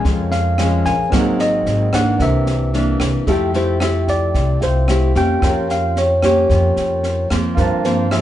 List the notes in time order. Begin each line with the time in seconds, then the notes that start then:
Already playing: F3 G#3 C#4 G#4 A#4 F5
0.05 F2, kick, snare
0.31 F5, snare
0.58 F3 G#3 C#4, cross-stick, snare
0.84 A#1 C#4 G#4 A#4 F5 G#5, kick, snare
1.10 G#1 G#2 F#3 A#3 C4 G#4 A#4, kick, cross-stick, snare
1.14 C4 F#5
1.39 D#5, snare
1.66 G#1, snare
1.93 E3 A#3 D4 F#5, kick, cross-stick, snare
2.18 C2 C3 D4 A#4, kick, snare
2.22 C5 E5
2.46 snare
2.74 E3 A#3 D4, snare
3.00 C2, kick, cross-stick, snare
3.27 F2 F3 A3 E4 G4 A4 E5, kick, snare
3.31 G5
3.54 A3 E4 G4 C5, snare
3.80 A3 E4 G4 E5, cross-stick, snare
4.08 D5, kick, snare
4.34 C2 C3, kick, snare
4.61 C2 F4 A4 C5 E5 G5, snare
4.88 A3 E4 G4, cross-stick, snare
5.15 F2 A#3 C#4 G4 G5, kick, snare
5.40 F2 F3 F4 A#4 C#5, kick, cross-stick, snare
5.46 G5
5.69 F5, snare
5.96 C#5, snare
6.22 A#3 C#4 G4 C#5, kick, cross-stick, snare
6.50 F2 F3, kick, snare
6.76 F2, snare
7.03 snare
7.30 F2 F3 A#3 C4, kick, cross-stick, snare
7.55 G2 F4 A#4 C5, kick, snare
7.60 A5
7.84 F3 A#3 C4 C5, snare
8.11 F3 A#3 C4 E5, cross-stick, snare